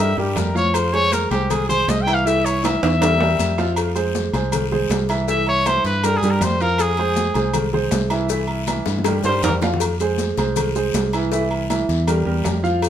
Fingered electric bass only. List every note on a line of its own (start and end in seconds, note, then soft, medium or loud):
0.00 0.15 G2 loud
0.17 0.35 G2 medium
0.36 1.25 F2 medium
1.31 1.84 C2 medium
1.88 2.77 C2 loud
2.83 3.36 E2 loud
3.39 4.28 F2 medium
4.33 4.86 C2 loud
4.90 5.79 C2 loud
5.84 6.20 G2 loud
6.22 6.40 G2 medium
6.41 7.29 F2 loud
7.35 7.88 C2 loud
7.92 8.81 C2 loud
8.86 9.21 G2 loud
9.24 9.42 G2 medium
9.43 10.31 F2 loud
10.38 10.90 C2 loud
10.94 11.83 C2 loud
11.89 12.24 E2 loud
12.26 12.44 E2 medium
12.46 12.89 F2 loud